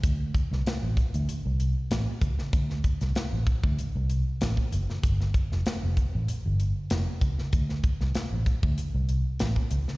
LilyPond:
<<
  \new Staff \with { instrumentName = "Fingered electric bass" } { \clef bass \time 4/4 \key c \lydian \tempo 4 = 96 d,8 r16 c,16 r16 a,,16 r16 d,16 r16 c,8 r16 a,,16 r16 cis,16 r16 | d,8 r16 c,16 r16 a,,16 r16 d,16 r16 c,8 r16 a,,16 r16 fis,,16 r16 | g,,8 r16 f,,16 r16 f,,16 r16 a,,16 r16 g,,8 r16 f,,16 r16 cis,16 r16 | d,8 r16 c,16 r16 a,,16 r16 d,16 r16 c,8 r16 a,,16 r16 cis,16 r16 | }
  \new DrumStaff \with { instrumentName = "Drums" } \drummode { \time 4/4 <hh bd>8 <hh bd>16 sn16 <hh sn>8 <hh bd>16 hh16 hh8 hh8 <hh sn>8 <hh bd>16 sn16 | <hh bd>16 sn16 <hh bd>16 <hh sn>16 <hh sn>8 <hh bd>16 bd16 hh8 hh8 <hh sn>16 bd16 hh16 sn16 | <hh bd>16 sn16 <hh bd>16 sn16 <hh sn>8 <hh bd>8 hh8 hh8 <hh sn>8 <hh bd>16 sn16 | <hh bd>16 sn16 <hh bd>16 sn16 <hh sn>8 <hh bd>16 bd16 hh8 hh8 <hh sn>16 bd16 hh16 sn16 | }
>>